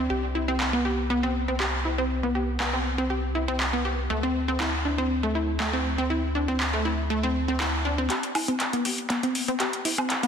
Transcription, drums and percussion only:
0.60 clap loud
1.60 clap loud
2.60 clap loud
3.60 clap loud
4.60 clap loud
5.60 clap loud
6.60 clap loud
7.60 clap loud
8.10 clap soft
8.10 closed hi-hat medium
8.23 closed hi-hat soft
8.35 open hi-hat loud
8.35 high woodblock medium
8.48 closed hi-hat soft
8.60 clap soft
8.60 closed hi-hat medium
8.73 closed hi-hat soft
8.85 open hi-hat loud
8.98 closed hi-hat soft
9.10 clap soft
9.10 closed hi-hat medium
9.23 closed hi-hat soft
9.35 open hi-hat loud
9.48 closed hi-hat soft
9.60 clap soft
9.60 closed hi-hat medium
9.73 closed hi-hat soft
9.85 open hi-hat loud
9.98 closed hi-hat soft
9.98 high woodblock medium
10.10 clap medium
10.10 closed hi-hat medium
10.23 closed hi-hat soft

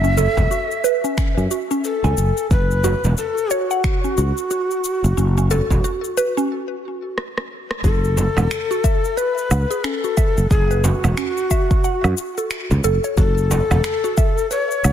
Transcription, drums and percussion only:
0.04 shaker soft
0.18 frame drum medium
0.18 shaker medium
0.37 kick medium
0.37 frame drum medium
0.37 shaker soft
0.51 shaker soft
0.71 shaker soft
0.85 shaker medium
1.05 shaker soft
1.18 finger snap medium
1.18 kick loud
1.18 shaker soft
1.38 shaker soft
1.51 shaker medium
1.71 shaker soft
1.84 shaker soft
2.04 frame drum medium
2.04 shaker soft
2.18 shaker medium
2.37 shaker soft
2.51 kick loud
2.51 shaker soft
2.71 shaker soft
2.84 frame drum medium
2.84 shaker medium
3.04 frame drum medium
3.04 shaker soft
3.18 shaker soft
3.38 shaker soft
3.51 shaker medium
3.71 shaker soft
3.84 finger snap medium
3.84 kick loud
3.84 shaker soft
4.04 shaker soft
4.18 shaker medium
4.38 shaker soft
4.51 shaker soft
4.71 shaker soft
4.84 shaker medium
5.04 shaker soft
5.18 shaker soft
5.38 shaker soft
5.51 frame drum medium
5.51 shaker medium
5.71 kick medium
5.71 frame drum loud
5.71 shaker soft
5.84 shaker soft
6.04 shaker soft
6.18 shaker medium
6.38 shaker soft
7.18 cross-stick medium
7.38 cross-stick medium
7.71 cross-stick medium
7.84 kick loud
7.84 shaker soft
8.04 shaker soft
8.17 frame drum medium
8.17 shaker medium
8.37 frame drum medium
8.37 low woodblock medium
8.37 shaker soft
8.51 finger snap loud
8.51 shaker soft
8.71 shaker soft
8.84 kick loud
8.84 shaker medium
9.05 shaker soft
9.18 shaker soft
9.38 shaker soft
9.51 low woodblock medium
9.51 shaker medium
9.71 shaker soft
9.84 finger snap loud
9.84 shaker soft
10.04 shaker soft
10.17 kick loud
10.17 shaker medium
10.38 shaker soft
10.51 kick loud
10.51 shaker soft
10.71 shaker soft
10.84 frame drum loud
10.84 shaker medium
11.04 frame drum loud
11.04 low woodblock medium
11.04 shaker soft
11.17 finger snap loud
11.17 shaker soft
11.37 shaker soft
11.51 kick medium
11.51 shaker medium
11.71 kick loud
11.71 shaker soft
11.84 shaker soft
12.04 low woodblock medium
12.04 shaker soft
12.18 shaker medium
12.38 shaker soft
12.51 finger snap loud
12.51 shaker soft
12.71 frame drum medium
12.71 shaker soft
12.84 shaker medium
13.04 shaker soft
13.17 kick loud
13.17 shaker soft
13.38 shaker soft
13.51 frame drum loud
13.51 shaker medium
13.71 frame drum loud
13.71 low woodblock medium
13.71 shaker soft
13.84 finger snap loud
13.84 shaker soft
14.04 shaker soft
14.18 kick loud
14.18 shaker medium
14.38 shaker soft
14.51 shaker soft
14.71 shaker soft
14.84 low woodblock medium
14.84 shaker medium

